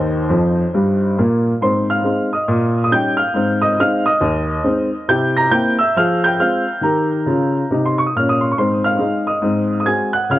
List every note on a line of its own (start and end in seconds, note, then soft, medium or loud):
0.00 0.24 D#2 medium
0.00 0.24 D#3 medium
0.00 1.14 D#4 medium
0.00 1.17 C5 medium
0.29 0.62 F2 medium
0.29 0.63 F3 medium
0.74 1.07 G2 medium
0.74 1.07 G3 medium
1.18 1.51 A#2 medium
1.18 1.51 A#3 medium
1.61 1.98 G#2 medium
1.61 1.87 C4 soft
1.61 1.87 C5 medium
1.61 1.88 C6 medium
1.90 2.30 F5 medium
1.90 2.32 F6 medium
2.03 2.27 G#3 soft
2.03 2.28 C4 soft
2.03 2.28 D#4 soft
2.33 2.81 D#5 soft
2.33 2.83 D#6 medium
2.48 2.85 A#2 medium
2.84 2.92 D#6 medium
2.91 3.15 G3 soft
2.91 3.15 C#4 soft
2.91 3.16 D#4 soft
2.91 3.18 G5 medium
2.91 3.19 G6 medium
3.17 3.59 F5 medium
3.17 3.61 F6 medium
3.34 3.71 G#2 medium
3.34 3.59 C4 soft
3.62 3.77 D#5 medium
3.62 3.78 D#6 medium
3.79 4.02 G#3 soft
3.79 4.03 C4 soft
3.79 4.04 D#4 medium
3.79 4.05 F5 medium
3.79 4.06 F6 medium
4.06 5.05 D#5 medium
4.06 5.09 D#6 medium
4.21 4.58 D#2 medium
4.63 4.88 G#3 soft
4.63 4.88 C4 medium
4.63 4.88 D#4 medium
5.09 5.45 C3 medium
5.09 5.33 E4 medium
5.09 5.34 G5 medium
5.09 5.35 G6 loud
5.37 5.52 A#5 medium
5.37 5.52 A#6 medium
5.51 5.75 A#3 soft
5.51 5.75 C4 soft
5.51 5.75 E4 soft
5.51 5.77 G5 medium
5.51 5.78 G6 medium
5.79 5.95 E5 medium
5.79 5.95 E6 medium
5.96 6.33 F3 medium
5.96 6.21 G#4 soft
5.96 6.22 F5 medium
5.96 6.23 F6 medium
6.24 6.39 G5 medium
6.24 6.39 G6 medium
6.39 6.63 G#3 soft
6.39 6.63 C4 soft
6.39 6.63 F4 soft
6.39 6.80 F5 medium
6.39 6.83 F6 medium
6.81 7.16 D#3 medium
6.81 7.18 G4 soft
6.81 7.79 A#4 soft
6.81 7.82 A#5 medium
7.26 7.60 C#3 medium
7.26 7.61 F4 medium
7.71 8.04 C3 medium
7.71 8.05 D#4 medium
7.86 7.97 C6 medium
7.98 8.05 C#6 medium
8.06 8.13 D#6 medium
8.16 8.49 A#2 soft
8.16 8.50 C#4 medium
8.16 8.28 F6 medium
8.29 8.41 D#6 medium
8.41 8.48 C6 medium
8.52 8.57 C#6 medium
8.57 8.93 G#2 medium
8.57 8.82 C4 soft
8.57 8.82 C5 medium
8.57 8.84 C6 medium
8.84 9.24 F5 medium
8.84 9.27 F6 medium
8.99 9.23 G#3 soft
8.99 9.23 D#4 soft
8.99 9.23 G#4 soft
9.27 9.75 D#5 soft
9.27 9.78 D#6 medium
9.42 9.79 G#2 medium
9.42 9.67 C4 soft
9.80 9.87 D#6 medium
9.85 10.09 G#3 soft
9.85 10.09 C4 soft
9.85 10.10 F#4 soft
9.85 10.11 G#5 medium
9.85 10.12 G#6 medium
10.13 10.29 F#5 medium
10.13 10.29 F#6 medium
10.30 10.39 C#3 medium
10.30 10.39 F4 soft
10.30 10.39 F5 medium
10.30 10.39 F6 medium